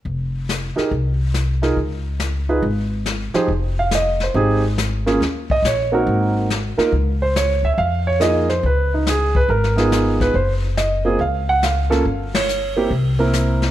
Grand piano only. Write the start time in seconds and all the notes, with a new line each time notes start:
0.76 D#4 G4 G#4 A#4
1.62 D#4 F4 G#4 A#4
2.49 D#4 F4 G#4 B4
3.34 F3 D#4 G4 G#4 C5
3.79 F5
3.95 D#5
4.23 C5
4.35 C4 D#4 G4 G#4
5.06 A#3 C#4 F4 G#4
5.51 D#5
5.67 C#5
5.92 A#3 C4 D#4 F#4 A#4
6.78 A#3 D#4 F4 A#4
7.22 C5
7.36 C#5
7.65 E5
7.74 E5
7.78 F5
8.07 C#5
8.20 A#3 D#4 F4 G#4 D#5
8.49 C5
8.66 B4
8.94 D#4
9.09 G#4
9.36 B4
9.50 A#4
9.76 B3 D#4 F4 G#4
10.21 B4
10.35 C5
10.77 D#5
11.05 A#3 C4 F4 G#4
11.21 F5
11.49 F#5
11.64 F5
11.90 A#3 C#4 F4 A4
12.35 C#5
12.76 A#3 C4 E4 G4
13.19 A#3 C4 E4 A#4